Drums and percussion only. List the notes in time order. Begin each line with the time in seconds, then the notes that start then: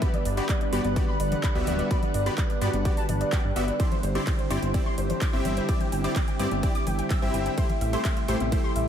0.02 kick, closed hi-hat
0.14 closed hi-hat, low conga
0.25 open hi-hat
0.37 closed hi-hat
0.49 kick, clap, closed hi-hat
0.61 closed hi-hat
0.73 open hi-hat
0.85 closed hi-hat, high conga
0.96 kick, closed hi-hat
1.20 open hi-hat
1.32 closed hi-hat, low conga
1.43 kick, clap, closed hi-hat
1.67 open hi-hat, low conga
1.79 closed hi-hat
1.91 kick, closed hi-hat
2.03 closed hi-hat, low conga
2.14 open hi-hat
2.26 closed hi-hat
2.38 kick, clap, closed hi-hat
2.50 closed hi-hat
2.62 open hi-hat
2.73 closed hi-hat, high conga
2.85 kick, closed hi-hat
2.97 open hi-hat
3.09 open hi-hat, low conga
3.21 closed hi-hat
3.32 kick, clap, closed hi-hat
3.56 open hi-hat
3.68 closed hi-hat
3.80 kick, closed hi-hat, ride
3.92 closed hi-hat, low conga
4.03 open hi-hat
4.15 closed hi-hat
4.27 kick, clap, closed hi-hat, ride
4.39 closed hi-hat
4.51 open hi-hat
4.62 closed hi-hat, high conga
4.74 kick, closed hi-hat, ride
4.98 open hi-hat
5.10 closed hi-hat, low conga
5.21 kick, clap, closed hi-hat, ride
5.45 open hi-hat, low conga
5.57 closed hi-hat
5.69 kick, closed hi-hat, ride
5.81 closed hi-hat, low conga
5.92 open hi-hat
6.04 closed hi-hat
6.16 kick, clap, closed hi-hat, ride
6.28 closed hi-hat
6.39 open hi-hat
6.51 closed hi-hat, high conga
6.63 kick, closed hi-hat, ride
6.75 open hi-hat
6.87 open hi-hat, low conga
6.99 closed hi-hat
7.10 kick, clap, closed hi-hat, ride
7.34 open hi-hat
7.46 closed hi-hat
7.58 kick, closed hi-hat, ride
7.70 closed hi-hat, low conga
7.81 open hi-hat
7.93 closed hi-hat
8.05 kick, clap, closed hi-hat, ride
8.17 closed hi-hat
8.28 open hi-hat
8.40 closed hi-hat, high conga
8.52 kick, closed hi-hat, ride
8.76 open hi-hat